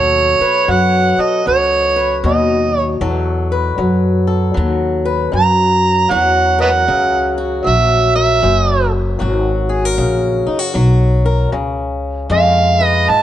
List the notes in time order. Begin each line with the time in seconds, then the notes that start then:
Already playing: D#2 B2 F#3 A4 C#5
0.40 B4, muted upright bass stroke
0.68 F#2 F#3 F#5
1.18 A4 D#5, muted upright bass stroke
1.46 C#2 F#3 C#5
1.96 B4
2.24 D#2 B2 D#5
2.79 C#5
3.01 E2 F#3 A4
3.52 B4
3.78 F#2 F#3
4.27 A4
4.54 D#2 F#3
5.05 B4
5.32 F#2 A#5
6.10 E2 F#3 F#4 F#5
6.59 A#4 B4 D#5 F#5
6.88 C#2 C#3
7.38 F#4
7.64 A#1 F#3 E5
8.15 A#4 E5
8.42 F#1 F#2
9.19 G#1 F#3 F#4
9.69 G#4
9.85 A#4
9.98 A#1 C#3
10.47 D#4, muted upright bass stroke
10.59 F#4
10.74 B1 F#3
11.26 A#4
11.52 C#2 C#3
12.30 F2 G#3 F4 F5
12.81 B4
12.85 D#5
13.09 G#2 A5